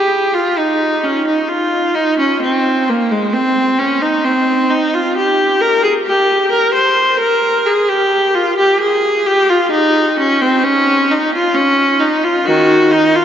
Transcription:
viola
Already playing: G4
0.34 F4
0.59 D#4
1.04 C#4
1.26 D#4
1.48 F4
1.95 D#4
2.18 C#4
2.41 C4
2.89 A#3
3.11 G#3
3.33 C4
3.79 C#4
4.02 D#4
4.24 C4
4.69 D#4
4.94 F4
5.16 G4
5.61 A#4
5.84 G#4
6.06 G4
6.51 A#4
6.74 C5
7.19 A#4
7.66 G#4
7.89 G4
8.35 F4
8.57 G4
8.80 G#4
9.26 G4
9.49 F4
9.71 D#4
10.19 C#4
10.41 C4
10.63 C#4
11.11 D#4
11.34 F4
11.54 C#4
11.99 D#4
12.24 F4
12.45 D#3 F#4
12.91 D#4
13.15 F4

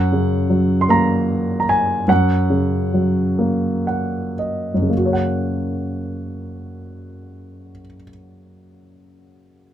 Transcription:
grand piano
Already playing: F#2 F#5
0.12 C#3
0.50 F#3
0.81 C6
0.89 A#3 A#5
1.60 A#5
1.69 G#5
2.08 F#2 F#5
2.50 C#3
2.94 F#3
3.39 A#3
3.87 F#5
4.39 D#5
4.74 F#2
4.82 C#3
4.89 A#3
4.97 F#4
5.05 C#5
5.13 F#5

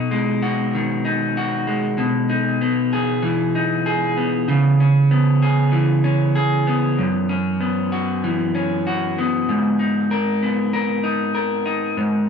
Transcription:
clean electric guitar
Already playing: B2 B3 D#4 F#4
0.11 G#3
0.43 F#4
0.75 D#3
1.05 D#4
1.37 F#4
1.67 G#3
1.98 B2
2.30 D#4
2.61 B3
2.93 G#4
3.22 E3
3.55 D#4
3.86 G#4
4.17 B3
4.48 C#3
4.80 C#4
5.11 B3
5.43 G#4
5.72 E3
6.04 C#4
6.35 G#4
6.67 B3
6.98 F#2
7.29 C#4
7.60 B3
7.92 F#4
8.24 E3
8.55 C#4
8.87 F#4
9.18 B3
9.49 G#2
9.79 D#4
10.11 A#4
10.43 B3
10.73 A#4
11.04 D#4
11.35 A#4
11.66 D#4
11.97 G#2

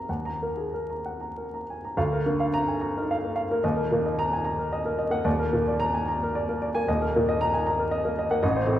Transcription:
grand piano
Already playing: A#5
0.09 D#2 F#5
0.25 A#5
0.42 A#3 A#4
0.57 G#4
0.74 A#4
0.90 A#5
1.06 F#5
1.21 A#5
1.38 A#4
1.54 A#5
1.70 G#5
1.85 A#5
1.97 D2 F5
2.13 A#4
2.26 D3 A#3
2.40 F5
2.54 A#5
2.68 G#5
2.81 A#5
2.97 D#4 A#4
3.11 F5
3.23 A#3 A#4
3.36 F5
3.51 A#3 A#4
3.63 D#1 D#2 D#5
3.76 A#4
3.91 A#2 A#3
4.06 D#5
4.19 A#5
4.33 G#5
4.45 A#5
4.59 A#4
4.73 D#5
4.85 A#3 A#4
4.99 D#5
5.10 A#3 F#5
5.24 D#1 D#2 D5
5.39 A#4
5.53 A#2 A#3
5.67 D5
5.80 A#5
5.94 G#5
6.08 A#5
6.23 A#4
6.35 D5
6.49 A#3 A#4
6.62 D5
6.75 A#3 G#5
6.88 D#1 D#2 D#5
7.02 A#4
7.16 A#2 A#3
7.29 D#5
7.41 A#5
7.54 G#5
7.66 A#5
7.79 A#4
7.91 D#5
8.05 A#3 A#4
8.19 D#5
8.31 A#3 F#5
8.43 A1 D#5
8.56 C5
8.67 A2 C4

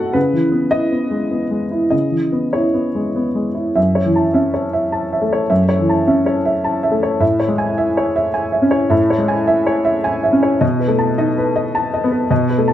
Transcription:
upright piano
Already playing: B2 F#3 A3 D#4 F#4 A4 D#5 F#5
0.13 C#3 B4
0.33 E3
0.52 B3
0.71 E4 D#5
0.92 B3
1.11 G#3
1.31 B3
1.51 G#3
1.71 E4
1.90 C#3 D#5
2.11 E3
2.32 B3
2.53 E4 C#5
2.74 B3
2.95 G#3
3.16 B3
3.35 G#3
3.55 E4
3.75 F#2 E5
3.95 C#5
4.05 E3
4.16 A5
4.34 C#4 E5
4.54 C#5
4.73 E5
4.92 A5
5.13 E5
5.22 A3
5.33 C#5
5.50 F#2 E5
5.69 C#5
5.80 E3
5.89 A5
6.07 C#4 E5
6.26 C#5
6.45 E5
6.64 A5
6.83 E5
6.92 A3
7.03 C#5
7.20 A2 E5
7.40 C#5
7.48 G#3
7.58 G#5
7.78 E5
7.97 C#5
8.16 E5
8.34 G#5
8.52 E5
8.62 C#4
8.71 C#5
8.90 A2 E5
9.10 C#5
9.18 G#3
9.28 G#5
9.47 E5
9.67 C#5
9.85 E5
10.04 G#5
10.23 E5
10.33 C#4
10.43 C#5
10.61 B2 D#5
10.80 B4
10.88 A3
10.99 A5
11.18 D#4 D#5
11.38 B4
11.56 D#5
11.75 A5
11.94 D#5
12.04 B3
12.11 B4
12.30 B2 D#5
12.50 B4
12.58 A3
12.68 A5

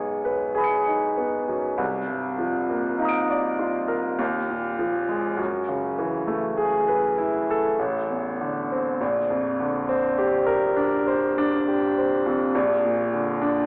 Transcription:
grand piano
Already playing: B1 F#2 G#3 B3 D#4 G#4 C#5
0.24 B4
0.54 G#4 G#5 B5
0.60 D#6 C#7
0.88 D#4
1.17 B3
1.48 F#2
1.78 C2
2.08 G2
2.38 F3
2.70 A#3
2.98 D#4 F5 A#5
3.05 D#6 D7
3.30 D5
3.59 F4
3.88 A#4
4.19 D#2
4.50 A#2
4.79 F3
5.08 G#3
5.37 F#2
5.68 C#3
5.98 E3
6.27 A3
6.57 G#4
6.88 B4
7.18 E4
7.50 A4
7.79 A1
8.10 E2
8.41 D3
8.72 C4
9.01 A#1
9.30 F2
9.60 D3
9.89 C4
10.18 G4
10.47 A#4
10.77 D4
11.08 C5
11.38 D4
11.68 G4
11.98 C4
12.26 F2
12.55 A#1
12.85 A#2
13.13 D3
13.41 D4

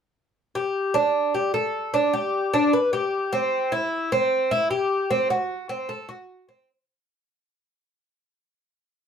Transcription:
cuban tres
0.55 G4
0.94 D4
1.35 G4
1.54 A4
1.94 D4
2.13 G4
2.54 D4
2.73 B4
2.93 G4
3.33 C4
3.72 E4
4.12 C4
4.51 E4
4.71 G4
5.11 C4
5.30 F#4
5.69 C4
5.89 A4
6.09 F#4
6.49 C4

